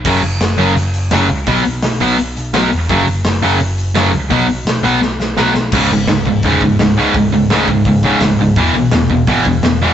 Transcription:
<<
  \new Staff \with { instrumentName = "Distorted electric guitar" } { \clef bass \time 4/4 \key cis \minor \tempo 4 = 169 <fis, cis fis>8 r4 <fis, cis fis>8 r4 <fis, cis fis>8 r8 | <b, fis b>8 r4 <b, fis b>8 r4 <b, fis b>8 r8 | <fis, cis fis>8 r4 <fis, cis fis>8 r4 <fis, cis fis>8 r8 | <b, fis b>8 r4 <b, fis b>8 r4 <b, fis b>8 r8 |
<cis, gis, cis>8 <cis, gis,>8 <cis, gis,>8 <cis, gis,>8 <cis, gis, cis>8 <cis, gis,>8 <cis, gis,>8 <cis, gis, cis>8 | <cis, gis,>8 <cis, gis,>8 <cis, gis, cis>8 <cis, gis,>8 <cis, gis,>8 <cis, gis, cis>8 <cis, gis,>8 <cis, gis,>8 | <e, b, e>8 <e, b,>8 <e, b,>8 <e, b,>8 <e, b, e>8 <e, b,>8 <e, b,>8 <e, b, e>8 | }
  \new Staff \with { instrumentName = "Distorted electric guitar" } { \clef bass \time 4/4 \key cis \minor <fis, cis fis>8 r4 <fis, cis fis>8 r4 <fis, cis fis>8 r8 | <b, fis b>8 r4 <b, fis b>8 r4 <b, fis b>8 r8 | <fis, cis fis>8 r4 <fis, cis fis>8 r4 <fis, cis fis>8 r8 | <b, fis b>8 r4 <b, fis b>8 r4 <b, fis b>8 r8 |
<cis, gis, cis>8 <cis, gis,>8 <cis, gis,>8 <cis, gis,>8 <cis, gis, cis>8 <cis, gis,>8 <cis, gis,>8 <cis, gis, cis>8 | <cis, gis,>8 <cis, gis,>8 <cis, gis, cis>8 <cis, gis,>8 <cis, gis,>8 <cis, gis, cis>8 <cis, gis,>8 <cis, gis,>8 | <e, b, e>8 <e, b,>8 <e, b,>8 <e, b,>8 <e, b, e>8 <e, b,>8 <e, b,>8 <e, b, e>8 | }
  \new Staff \with { instrumentName = "Picked electric bass" } { \clef bass \time 4/4 \key cis \minor fis,,8 fis,,8 fis,,8 fis,,8 fis,,4 fis,,8 cis,8 | b,,8 b,,8 b,,8 b,,8 b,,8 b,,8 b,,8 e,,8 | fis,,8 fis,,8 fis,,8 fis,,8 fis,,4 fis,,8 cis,8 | b,,8 b,,8 b,,8 b,,8 b,,8 b,,8 b,,8 b,,8 |
cis,,8 gis,,8 cis,,8 cis,,8 e,,8 cis,,8 cis,,4 | cis,,8 cis,,8 cis,,8 cis,,8 cis,,4 cis,,8 cis,,8 | e,,8 b,,8 e,,8 e,,8 gis,,8 e,,8 e,,4 | }
  \new DrumStaff \with { instrumentName = "Drums" } \drummode { \time 4/4 <cymc bd>8 hho8 <hho sn>8 hho8 hho8 hho8 <hho sn>8 hho8 | <hho bd>8 hho8 <hho sn>8 hho8 hho8 hho8 <hho sn>8 hho8 | <hho bd>8 hho8 <hho sn>8 hho8 hho8 hho8 <hho sn>8 hho8 | <hho bd>8 hho8 <hho sn>8 hho8 sn8 sn8 sn8 sn8 |
<cymc bd>4 <hho sn>8 bd8 <hho bd>8 bd8 <hho sn>4 | <hho bd>4 <hho sn>8 bd8 <hho bd>8 bd8 <hho sn>4 | <hho bd>4 <hho sn>8 bd8 <hho bd>8 bd8 <hho sn>4 | }
>>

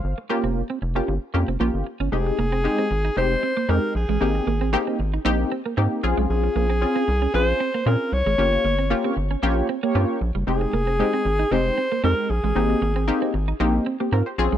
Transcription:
<<
  \new Staff \with { instrumentName = "Alto saxophone" } { \time 4/4 \key f \minor \tempo 4 = 115 r1 | aes'2 c''4 bes'8 aes'8~ | aes'4. r2 r8 | aes'2 c''4 bes'8 des''8~ |
des''4. r2 r8 | aes'2 c''4 bes'8 aes'8~ | aes'4. r2 r8 | }
  \new Staff \with { instrumentName = "Analog polysynth" } { \time 4/4 \key f \minor r1 | r1 | r1 | r1 |
r4 r16 <bes g' des''>16 r8 <bes g' des''>16 <bes g' des''>16 r16 <bes g' des''>8. r8 | r1 | r1 | }
  \new Staff \with { instrumentName = "Analog polysynth" } { \time 4/4 \key f \minor << { <c'' f''>16 r2. r8. | r1 | r1 | r1 |
r1 | r1 | r2 r8. <c' g'>16 <f' bes'>16 <g' c''>8 r16 | } \\ { r8 <bes des' f' g'>8 r8. <bes des' f' g'>16 r8 <bes des' f' g'>16 r16 <bes des' f' g'>8 r8 | <aes c' ees' g'>8 r8 <aes c' ees' g'>8 r8 <aes c' ees' g'>8 r8 <aes c' ees' g'>8 r8 | <bes c' ees' g'>8 r8 <bes c' ees' g'>8 r8 <bes c' ees' g'>8 r8 <bes c' ees' g'>8 <c' des' f' aes'>8~ | <c' des' f' aes'>8. r16 <c' des' f' aes'>8 r8 <c' des' f' aes'>8 r8 <c' des' f' aes'>8 r8 |
<bes des' f' g'>8 r8 <bes des' f' g'>8 r8 <bes des' f' g'>8 r8 <bes des' f' g'>8 r8 | <aes c' ees' g'>8 r8 <aes c' ees' g'>8 r8 <aes c' ees' g'>8 r8 <aes c' ees' g'>8 r8 | <bes c' ees' g'>8 r8 <bes c' ees' g'>8 r8 <bes c' ees' g'>8 r4 <c' des' f' aes'>8 | } >> }
  \new Staff \with { instrumentName = "Clean electric guitar" } { \time 4/4 \key f \minor r8 bes16 c'16 r16 c'16 r16 des'16 r8 des'16 c'16 bes16 r8 des'16 | r8 bes16 c'16 r16 c'16 r16 ees'16 r8 c'16 bes16 c'16 r8 aes16 | r8 bes16 c'16 r16 c'16 r16 ees'16 r8 c'16 bes16 c'16 r8 aes16 | r8 bes16 c'16 r16 c'16 r16 des'16 r8 c'16 bes16 c'16 r8 aes16 |
r8 bes16 c'16 r16 c'16 r16 des'16 r8 c'16 bes16 c'16 r8 g16 | r8 bes16 c'16 r16 c'16 r16 ees'16 r8 c'16 bes16 c'16 r8 aes16 | r8 bes16 c'16 r16 c'16 r16 ees'16 r8 c'16 bes16 c'16 r8 aes16 | }
  \new Staff \with { instrumentName = "Analog synth bass" } { \clef bass \time 4/4 \key f \minor g,,16 r8 f,,8 r16 f,,8 g,,16 r16 f,16 f,,16 bes,,16 g,,16 r16 g,,16 | f,,8 f,,8. r16 aes,,8 f,,8 r8 f,16 r16 bes,,16 a,,16 | aes,,8 aes,,8. r16 aes,,8 bes,,8 r8 aes,16 r16 bes,,16 b,,16 | bes,,8 bes,,8. r16 c,8 bes,,8 r8 bes,16 r16 c,16 aes,,16 |
g,,8 g,,8. r16 g,,8 bes,,8 r8 g,16 r16 bes,,16 ges,,16 | f,,8 f,,8. r16 aes,,8 f,,8 r8 f,16 r16 bes,,16 a,,16 | aes,,8 aes,,8. r16 aes,,8 bes,,8 r8 aes,16 r16 bes,,16 b,,16 | }
>>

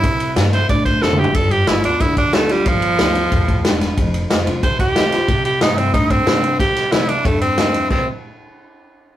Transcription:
<<
  \new Staff \with { instrumentName = "Tenor saxophone" } { \time 4/4 \key c \mixolydian \tempo 4 = 183 e'4 r8 c''8 d''8 c''8 a'8 g'8 | a'8 g'8 e'8 d'8 e'8 d'8 a8 g8 | f2. r4 | r2 c''8 g'4.~ |
g'8 g'8 ees'8 c'8 ees'8 c'4. | g'4 e'8 d'8 a8 c'4. | c'8 r2. r8 | }
  \new Staff \with { instrumentName = "Steel-string acoustic guitar" } { \time 4/4 \key c \mixolydian << { r4 <e bes c' e'>8 <c' e'>8 r4 <e bes c' e'>8 <c' e'>8 | r4 <g b f'>8 <b f'>8 r4 <g b f'>8 <b f'>8 | r4 <g b f'>8 <b f'>8 r2 | r4 <ees a c' f'>8 <c' f'>8 r4 <ees a c' f'>8 <c' f'>8 |
r4 <e bes c' e'>8 <c' e'>8 r4 <e bes c' e'>8 <c' e'>8 | r4 <e bes c' e'>8 <c' e'>8 r4 <e bes c' e'>8 <c' e'>8 | <c e bes c' e'>8 r2. r8 | } \\ { c2 g,2 | g2 d2 | g2 a,4 g,4 | f,2 c2 |
c2 g,2 | c2 g,2 | r1 | } >> }
  \new Staff \with { instrumentName = "Upright bass" } { \clef bass \time 4/4 \key c \mixolydian c,4 g,4 a,4 f,,4 | g,,4 g,,8 d,8 f,4 d,4 | g,,4 d,4 e,4 e,,4 | f,,4 f,,8 c,8 ees,4 c,4 |
c,4 g,4 a,4 c4 | c,4 c,4 e,4 e,4 | c,8 r2. r8 | }
  \new DrumStaff \with { instrumentName = "Drums" } \drummode { \time 4/4 <bd cymr>8 cymr8 <cymr sn>8 cymr8 <bd cymr>8 <bd cymr>8 \tuplet 3/2 { sn8 toml8 tomfh8 } | <bd cymr>8 cymr8 <cymr sn>8 cymr8 <bd cymr>8 <bd cymr>8 <cymr sn>8 <cymr sn>8 | <bd cymr>8 cymr8 <cymr sn>8 cymr8 <bd cymr>8 <bd cymr>8 <cymr sn>8 <cymr sn>8 | <bd cymr>8 cymr8 <cymr sn>8 cymr8 <bd cymr>8 <bd cymr>8 <cymr sn>8 <cymr sn>8 |
<bd cymr>8 cymr8 <cymr sn>8 cymr8 <bd cymr>8 <bd cymr>8 <cymr sn>8 cymr8 | <bd cymr sn>8 <cymr sn>8 <cymr sn>8 cymr8 <bd cymr>8 cymr8 <cymr sn>8 cymr8 | <cymc bd>4 r4 r4 r4 | }
>>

